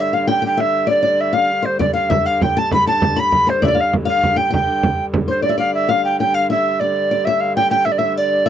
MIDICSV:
0, 0, Header, 1, 5, 480
1, 0, Start_track
1, 0, Tempo, 302877
1, 1406, Time_signature, 6, 3, 24, 8
1, 13457, End_track
2, 0, Start_track
2, 0, Title_t, "Recorder"
2, 0, Program_c, 0, 74
2, 0, Note_on_c, 0, 76, 88
2, 215, Note_on_c, 0, 77, 87
2, 239, Note_off_c, 0, 76, 0
2, 449, Note_off_c, 0, 77, 0
2, 471, Note_on_c, 0, 79, 101
2, 681, Note_off_c, 0, 79, 0
2, 729, Note_on_c, 0, 79, 93
2, 954, Note_on_c, 0, 76, 101
2, 977, Note_off_c, 0, 79, 0
2, 1420, Note_off_c, 0, 76, 0
2, 1427, Note_on_c, 0, 74, 96
2, 1908, Note_on_c, 0, 76, 94
2, 1932, Note_off_c, 0, 74, 0
2, 2124, Note_on_c, 0, 77, 98
2, 2148, Note_off_c, 0, 76, 0
2, 2618, Note_on_c, 0, 72, 87
2, 2642, Note_off_c, 0, 77, 0
2, 2843, Note_off_c, 0, 72, 0
2, 2853, Note_on_c, 0, 74, 86
2, 3060, Note_off_c, 0, 74, 0
2, 3070, Note_on_c, 0, 77, 98
2, 3322, Note_on_c, 0, 76, 95
2, 3346, Note_off_c, 0, 77, 0
2, 3576, Note_on_c, 0, 77, 103
2, 3600, Note_off_c, 0, 76, 0
2, 3840, Note_on_c, 0, 79, 95
2, 3864, Note_off_c, 0, 77, 0
2, 4092, Note_on_c, 0, 81, 105
2, 4116, Note_off_c, 0, 79, 0
2, 4312, Note_off_c, 0, 81, 0
2, 4329, Note_on_c, 0, 83, 118
2, 4536, Note_off_c, 0, 83, 0
2, 4553, Note_on_c, 0, 81, 114
2, 5060, Note_on_c, 0, 83, 106
2, 5084, Note_off_c, 0, 81, 0
2, 5534, Note_on_c, 0, 72, 93
2, 5558, Note_off_c, 0, 83, 0
2, 5754, Note_off_c, 0, 72, 0
2, 5796, Note_on_c, 0, 74, 95
2, 6027, Note_on_c, 0, 77, 99
2, 6051, Note_off_c, 0, 74, 0
2, 6241, Note_off_c, 0, 77, 0
2, 6474, Note_on_c, 0, 77, 95
2, 6925, Note_on_c, 0, 79, 98
2, 6949, Note_off_c, 0, 77, 0
2, 7170, Note_off_c, 0, 79, 0
2, 7187, Note_on_c, 0, 79, 97
2, 8007, Note_off_c, 0, 79, 0
2, 8389, Note_on_c, 0, 72, 80
2, 8605, Note_off_c, 0, 72, 0
2, 8616, Note_on_c, 0, 74, 92
2, 8838, Note_off_c, 0, 74, 0
2, 8852, Note_on_c, 0, 77, 80
2, 9076, Note_off_c, 0, 77, 0
2, 9098, Note_on_c, 0, 76, 96
2, 9356, Note_on_c, 0, 77, 98
2, 9380, Note_off_c, 0, 76, 0
2, 9568, Note_off_c, 0, 77, 0
2, 9577, Note_on_c, 0, 79, 82
2, 9798, Note_off_c, 0, 79, 0
2, 9822, Note_on_c, 0, 79, 94
2, 10051, Note_on_c, 0, 77, 107
2, 10075, Note_off_c, 0, 79, 0
2, 10291, Note_off_c, 0, 77, 0
2, 10312, Note_on_c, 0, 76, 92
2, 10769, Note_on_c, 0, 74, 92
2, 10793, Note_off_c, 0, 76, 0
2, 11484, Note_on_c, 0, 76, 93
2, 11508, Note_off_c, 0, 74, 0
2, 11729, Note_on_c, 0, 77, 104
2, 11753, Note_off_c, 0, 76, 0
2, 11968, Note_off_c, 0, 77, 0
2, 11981, Note_on_c, 0, 79, 119
2, 12197, Note_off_c, 0, 79, 0
2, 12207, Note_on_c, 0, 79, 104
2, 12439, Note_on_c, 0, 76, 94
2, 12463, Note_off_c, 0, 79, 0
2, 12545, Note_on_c, 0, 74, 83
2, 12569, Note_off_c, 0, 76, 0
2, 12646, Note_on_c, 0, 76, 98
2, 12670, Note_off_c, 0, 74, 0
2, 12921, Note_off_c, 0, 76, 0
2, 12952, Note_on_c, 0, 74, 97
2, 13457, Note_off_c, 0, 74, 0
2, 13457, End_track
3, 0, Start_track
3, 0, Title_t, "Nylon-string guitar"
3, 0, Program_c, 1, 24
3, 0, Note_on_c, 1, 76, 87
3, 197, Note_off_c, 1, 76, 0
3, 206, Note_on_c, 1, 77, 72
3, 285, Note_off_c, 1, 77, 0
3, 435, Note_on_c, 1, 79, 97
3, 644, Note_off_c, 1, 79, 0
3, 663, Note_on_c, 1, 79, 89
3, 742, Note_off_c, 1, 79, 0
3, 909, Note_on_c, 1, 76, 84
3, 1375, Note_on_c, 1, 74, 93
3, 1413, Note_off_c, 1, 76, 0
3, 1607, Note_off_c, 1, 74, 0
3, 1626, Note_on_c, 1, 74, 76
3, 2083, Note_off_c, 1, 74, 0
3, 2104, Note_on_c, 1, 77, 78
3, 2574, Note_on_c, 1, 72, 78
3, 2612, Note_off_c, 1, 77, 0
3, 2814, Note_off_c, 1, 72, 0
3, 2842, Note_on_c, 1, 74, 92
3, 2921, Note_off_c, 1, 74, 0
3, 3066, Note_on_c, 1, 77, 75
3, 3320, Note_off_c, 1, 77, 0
3, 3326, Note_on_c, 1, 76, 93
3, 3575, Note_off_c, 1, 76, 0
3, 3575, Note_on_c, 1, 77, 87
3, 3821, Note_off_c, 1, 77, 0
3, 3838, Note_on_c, 1, 79, 76
3, 4049, Note_off_c, 1, 79, 0
3, 4068, Note_on_c, 1, 81, 101
3, 4307, Note_off_c, 1, 81, 0
3, 4315, Note_on_c, 1, 83, 105
3, 4528, Note_off_c, 1, 83, 0
3, 4554, Note_on_c, 1, 81, 85
3, 4991, Note_off_c, 1, 81, 0
3, 5014, Note_on_c, 1, 83, 94
3, 5461, Note_off_c, 1, 83, 0
3, 5498, Note_on_c, 1, 72, 82
3, 5731, Note_off_c, 1, 72, 0
3, 5738, Note_on_c, 1, 74, 100
3, 5777, Note_on_c, 1, 76, 76
3, 5792, Note_off_c, 1, 74, 0
3, 5832, Note_on_c, 1, 74, 88
3, 5846, Note_off_c, 1, 76, 0
3, 5936, Note_on_c, 1, 77, 75
3, 5954, Note_off_c, 1, 74, 0
3, 6177, Note_off_c, 1, 77, 0
3, 6422, Note_on_c, 1, 77, 94
3, 6884, Note_off_c, 1, 77, 0
3, 6915, Note_on_c, 1, 79, 86
3, 7119, Note_off_c, 1, 79, 0
3, 7138, Note_on_c, 1, 79, 88
3, 8053, Note_off_c, 1, 79, 0
3, 8364, Note_on_c, 1, 72, 69
3, 8588, Note_off_c, 1, 72, 0
3, 8594, Note_on_c, 1, 74, 78
3, 8700, Note_off_c, 1, 74, 0
3, 8704, Note_on_c, 1, 76, 70
3, 8814, Note_off_c, 1, 76, 0
3, 8838, Note_on_c, 1, 74, 88
3, 9307, Note_off_c, 1, 74, 0
3, 9329, Note_on_c, 1, 77, 84
3, 9821, Note_off_c, 1, 77, 0
3, 9828, Note_on_c, 1, 79, 83
3, 10050, Note_off_c, 1, 79, 0
3, 10050, Note_on_c, 1, 77, 83
3, 10291, Note_off_c, 1, 77, 0
3, 10299, Note_on_c, 1, 76, 78
3, 10788, Note_on_c, 1, 74, 79
3, 10789, Note_off_c, 1, 76, 0
3, 11250, Note_off_c, 1, 74, 0
3, 11269, Note_on_c, 1, 74, 87
3, 11505, Note_off_c, 1, 74, 0
3, 11520, Note_on_c, 1, 76, 97
3, 11987, Note_off_c, 1, 76, 0
3, 11993, Note_on_c, 1, 79, 95
3, 12200, Note_off_c, 1, 79, 0
3, 12219, Note_on_c, 1, 79, 93
3, 12436, Note_off_c, 1, 79, 0
3, 12458, Note_on_c, 1, 76, 66
3, 12548, Note_off_c, 1, 76, 0
3, 12659, Note_on_c, 1, 76, 84
3, 12954, Note_off_c, 1, 76, 0
3, 12954, Note_on_c, 1, 74, 99
3, 13397, Note_off_c, 1, 74, 0
3, 13404, Note_on_c, 1, 76, 93
3, 13457, Note_off_c, 1, 76, 0
3, 13457, End_track
4, 0, Start_track
4, 0, Title_t, "Hurdy-gurdy"
4, 0, Program_c, 2, 110
4, 0, Note_on_c, 2, 43, 68
4, 0, Note_on_c, 2, 50, 69
4, 2869, Note_off_c, 2, 50, 0
4, 2869, Note_on_c, 2, 50, 65
4, 2882, Note_off_c, 2, 43, 0
4, 2882, Note_on_c, 2, 43, 69
4, 8628, Note_off_c, 2, 50, 0
4, 8628, Note_on_c, 2, 50, 73
4, 8637, Note_off_c, 2, 43, 0
4, 8637, Note_on_c, 2, 43, 67
4, 13457, Note_off_c, 2, 43, 0
4, 13457, Note_off_c, 2, 50, 0
4, 13457, End_track
5, 0, Start_track
5, 0, Title_t, "Frame drum"
5, 2856, Note_on_c, 9, 64, 83
5, 3014, Note_off_c, 9, 64, 0
5, 3343, Note_on_c, 9, 64, 91
5, 3501, Note_off_c, 9, 64, 0
5, 3826, Note_on_c, 9, 64, 81
5, 3985, Note_off_c, 9, 64, 0
5, 4300, Note_on_c, 9, 64, 83
5, 4459, Note_off_c, 9, 64, 0
5, 4784, Note_on_c, 9, 64, 97
5, 4943, Note_off_c, 9, 64, 0
5, 5266, Note_on_c, 9, 64, 74
5, 5424, Note_off_c, 9, 64, 0
5, 5751, Note_on_c, 9, 64, 83
5, 5910, Note_off_c, 9, 64, 0
5, 6233, Note_on_c, 9, 64, 90
5, 6392, Note_off_c, 9, 64, 0
5, 6710, Note_on_c, 9, 64, 75
5, 6869, Note_off_c, 9, 64, 0
5, 7189, Note_on_c, 9, 64, 85
5, 7348, Note_off_c, 9, 64, 0
5, 7432, Note_on_c, 9, 64, 23
5, 7591, Note_off_c, 9, 64, 0
5, 7659, Note_on_c, 9, 64, 98
5, 7817, Note_off_c, 9, 64, 0
5, 8140, Note_on_c, 9, 64, 98
5, 8298, Note_off_c, 9, 64, 0
5, 8372, Note_on_c, 9, 64, 30
5, 8530, Note_off_c, 9, 64, 0
5, 13457, End_track
0, 0, End_of_file